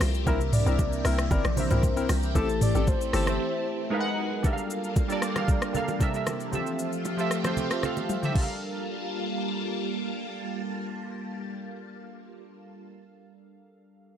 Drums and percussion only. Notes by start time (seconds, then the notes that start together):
0.01 cross-stick, open hi-hat, low bongo, shaker
0.14 shaker
0.27 kick, low conga, shaker
0.41 shaker
0.53 mid tom, open hi-hat, shaker
0.67 shaker
0.79 kick, high bongo, shaker
0.93 shaker
1.05 cross-stick, open hi-hat, shaker
1.18 cross-stick, shaker
1.31 kick, low bongo, low conga, shaker
1.45 cross-stick, shaker
1.57 open hi-hat, low conga, shaker
1.71 mid tom, low bongo, shaker
1.83 kick, high bongo, shaker
1.97 shaker
2.09 cross-stick, open hi-hat, low bongo, shaker
2.23 shaker
2.35 kick, low conga, shaker
2.49 shaker
2.61 mid tom, open hi-hat, shaker
2.75 shaker
2.87 kick, high bongo, shaker
3.01 shaker
3.13 cross-stick, open hi-hat, shaker
3.27 cross-stick, shaker
4.44 kick, low conga, shaker
4.58 shaker
4.70 shaker
4.84 shaker
4.96 kick, high bongo, shaker
5.10 shaker
5.22 cross-stick, shaker
5.36 cross-stick, low bongo, shaker
5.48 kick, low conga, shaker
5.62 cross-stick, shaker
5.75 low conga, shaker
5.88 low bongo, shaker
6.01 kick, high bongo, shaker
6.14 shaker
6.27 cross-stick, low bongo, shaker
6.40 shaker
6.53 low conga, shaker
6.67 shaker
6.79 shaker
6.93 shaker
7.05 high bongo, shaker
7.19 shaker
7.31 cross-stick, shaker
7.44 cross-stick, low bongo, shaker
7.57 low conga, shaker
7.71 cross-stick, shaker
7.83 cross-stick, low conga, shaker
7.97 low bongo, shaker
8.09 high tom, high bongo, shaker
8.23 mid tom, shaker
8.35 kick, crash, low conga